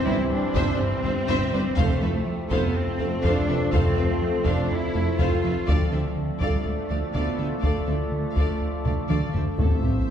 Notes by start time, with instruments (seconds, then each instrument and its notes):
Already playing: trombone section E3 C4, synth drone G3 C4 E4 C5, french horn section G4 C5
0.06 tuba G1, double bass section G1, analog synth bass G3, synth arpeggio sound G3, cello section E4, violin section B4 D5, viola section C5
0.31 analog synth bass G3, cello section D4
0.55 tuba G1, double bass section G1, analog synth bass G2, synth arpeggio sound C3, violin section C5 E5, viola section C5, taiko
0.79 analog synth bass G2, cello section C4
1.04 tuba G1, double bass section G1, analog synth bass G2, synth arpeggio sound E3, violin section C5 E5, viola section C5
1.28 double bass section G1, tuba G1, analog synth bass G2, synth arpeggio sound C3, violin section C5 E5, viola section C5, taiko
1.53 double bass section G1, tuba G1, analog synth bass G3, synth arpeggio sound G3, violin section B4 D5, viola section C5
1.77 double bass section F1, tuba F1, analog synth bass F2, synth drone F3 A3 C4 A4, trombone section F3 A3, synth arpeggio sound F3, cello section A3, french horn section A4 C5, viola section A4, violin section C5 F5, taiko
2.02 double bass section F1, tuba F1, analog synth bass F3, synth arpeggio sound C4, viola section A4, violin section B4 E5
2.26 analog synth bass F3
2.50 double bass section F1, tuba F1, analog synth bass F2, synth arpeggio sound F3, cello section B3, viola section A4, violin section C5 F5, taiko
2.75 analog synth bass F2, cello section C4
2.99 double bass section F1, tuba F1, analog synth bass F2, synth arpeggio sound A3, viola section A4, violin section C5 F5
3.24 tuba F1, double bass section F1, analog synth bass F2, synth arpeggio sound F3, cello section D4, viola section A4, violin section C5 F5, taiko
3.48 double bass section F1, tuba F1, analog synth bass F3, synth arpeggio sound C4, viola section A4, violin section B4 E5
3.72 tuba F1, double bass section F1, analog synth bass F2, synth arpeggio sound F3, cello section C4, viola section A4, violin section C5 F5, taiko
3.96 tuba F1, double bass section F1, analog synth bass F3, synth arpeggio sound C4, viola section A4, violin section B4 E5
4.22 analog synth bass F3
4.45 double bass section F1, tuba F1, analog synth bass F2, synth arpeggio sound F3, cello section D4, viola section A4, violin section C5 F5, taiko
4.70 analog synth bass F2, cello section E4
4.94 tuba F1, double bass section F1, analog synth bass F2, synth arpeggio sound A3, viola section A4, violin section C5 F5
5.19 tuba F1, double bass section F1, analog synth bass F2, synth arpeggio sound F3, cello section F4, viola section A4, violin section C5 F5, taiko
5.43 tuba F1, double bass section F1, analog synth bass F3, synth arpeggio sound C4, viola section A4, violin section B4 E5
5.67 tuba D2, analog synth bass D2, double bass section D2, synth arpeggio sound D3, cello section F3, trombone section F3 A3, synth drone A3 D4 F4 A4, viola section A4, french horn section A4 D5, violin section D5 F5, taiko
5.92 tuba D2, double bass section D2, analog synth bass D3, synth arpeggio sound A3, viola section A4, violin section C5 E5
6.17 analog synth bass D3
6.41 tuba D2, double bass section D2, analog synth bass D2, synth arpeggio sound D3, cello section G3, viola section A4, violin section D5 F5, taiko
6.65 analog synth bass D2, cello section A3
6.90 analog synth bass D2, double bass section D2, tuba D2, synth arpeggio sound F3, viola section A4, violin section D5 F5
7.14 double bass section D2, tuba D2, analog synth bass D2, synth arpeggio sound D3, cello section B3, viola section A4, violin section D5 F5, taiko
7.38 tuba D2, double bass section D2, analog synth bass D3, synth arpeggio sound A3, viola section A4, violin section C5 E5
7.62 double bass section D2, analog synth bass D2, tuba D2, synth arpeggio sound D3, cello section A3, viola section A4, violin section D5 F5, taiko
7.87 tuba D2, double bass section D2, analog synth bass D3, synth arpeggio sound A3, viola section A4, violin section C5 E5
8.12 analog synth bass D3
8.36 tuba D2, double bass section D2, analog synth bass D2, synth arpeggio sound D3, viola section A4, violin section D5 F5, taiko
8.61 analog synth bass D2
8.85 tuba D2, double bass section D2, analog synth bass D2, synth arpeggio sound F3, viola section A4, violin section D5 F5, taiko low-mid
9.09 double bass section D2, tuba D2, analog synth bass D2, synth arpeggio sound D3, viola section A4, violin section D5 F5, taiko mid
9.34 double bass section D2, tuba D2, analog synth bass D3, synth arpeggio sound A3, viola section A4, violin section C5 E5, taiko low
9.57 double bass section A1, tuba A1, cello section A2, analog synth bass A2, trombone section E3 A3, synth drone A3 C4 E4 A4, synth arpeggio sound A3, french horn section C4, viola section A4, violin section C5 E5, taiko, sub drop
9.82 tuba A1, double bass section A1, cello section A2, analog synth bass A2, synth arpeggio sound C4, viola section G4
10.07 analog synth bass A3